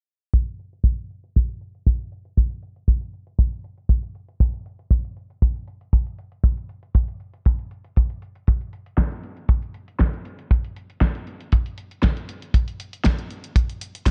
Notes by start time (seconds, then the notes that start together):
0.34 kick, closed hi-hat
0.47 closed hi-hat
0.59 closed hi-hat
0.73 closed hi-hat
0.84 kick, closed hi-hat
0.98 closed hi-hat
1.10 closed hi-hat
1.24 closed hi-hat
1.36 kick, closed hi-hat
1.49 closed hi-hat
1.61 closed hi-hat
1.75 closed hi-hat
1.86 kick, closed hi-hat
2.00 closed hi-hat
2.12 closed hi-hat
2.25 closed hi-hat
2.37 kick, closed hi-hat
2.51 closed hi-hat
2.63 closed hi-hat
2.76 closed hi-hat
2.88 kick, closed hi-hat
3.01 closed hi-hat
3.13 closed hi-hat
3.27 closed hi-hat
3.39 kick, closed hi-hat
3.52 closed hi-hat
3.64 closed hi-hat
3.78 closed hi-hat
3.89 kick, closed hi-hat
4.03 closed hi-hat
4.15 closed hi-hat
4.29 closed hi-hat
4.40 kick, closed hi-hat
4.54 closed hi-hat
4.66 closed hi-hat
4.79 closed hi-hat
4.91 kick, closed hi-hat
5.05 closed hi-hat
5.17 closed hi-hat
5.30 closed hi-hat
5.42 kick, closed hi-hat
5.56 closed hi-hat
5.67 closed hi-hat
5.81 closed hi-hat
5.93 kick, closed hi-hat
6.07 closed hi-hat
6.19 closed hi-hat
6.32 closed hi-hat
6.44 kick, closed hi-hat
6.57 closed hi-hat
6.69 closed hi-hat
6.83 closed hi-hat
6.95 kick, closed hi-hat
7.08 closed hi-hat
7.20 closed hi-hat
7.34 closed hi-hat
7.45 kick, closed hi-hat
7.59 closed hi-hat
7.71 closed hi-hat
7.84 closed hi-hat
7.96 kick, closed hi-hat
8.10 closed hi-hat
8.22 closed hi-hat
8.35 closed hi-hat
8.47 kick, closed hi-hat
8.61 closed hi-hat
8.73 closed hi-hat
8.86 closed hi-hat
8.98 kick, snare, closed hi-hat
9.11 closed hi-hat
9.23 closed hi-hat
9.37 closed hi-hat
9.49 kick, closed hi-hat
9.62 closed hi-hat
9.74 closed hi-hat
9.88 closed hi-hat
9.99 kick, snare, closed hi-hat
10.13 closed hi-hat
10.25 closed hi-hat
10.39 closed hi-hat
10.51 kick, closed hi-hat
10.64 closed hi-hat
10.76 closed hi-hat
10.90 closed hi-hat
11.01 kick, snare, closed hi-hat
11.15 closed hi-hat
11.27 closed hi-hat
11.41 closed hi-hat
11.52 kick, closed hi-hat
11.66 closed hi-hat
11.78 closed hi-hat
11.91 closed hi-hat
12.03 kick, snare, closed hi-hat
12.17 closed hi-hat
12.29 closed hi-hat
12.42 closed hi-hat
12.54 kick, closed hi-hat
12.68 closed hi-hat
12.80 closed hi-hat
12.93 closed hi-hat
13.04 kick, snare, closed hi-hat
13.19 closed hi-hat
13.31 closed hi-hat
13.44 closed hi-hat
13.56 kick, closed hi-hat
13.70 closed hi-hat
13.81 closed hi-hat
13.95 closed hi-hat
14.06 kick, snare, closed hi-hat